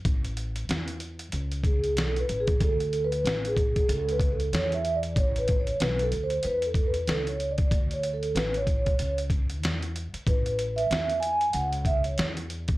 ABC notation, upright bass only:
X:1
M:4/4
L:1/16
Q:"Swing 16ths" 1/4=94
K:A
V:1 name="Upright bass" clef=bass
A,,,4 E,,4 C,,4 B,,,2 A,,,2 | D,,4 A,,,4 C,,4 E,,4 | A,,,4 B,,,2 D,,2 E,,4 C,,4 | D,,4 A,,,4 C,,4 E,,3 z |
A,,,4 E,,4 C,,4 E,,4 |]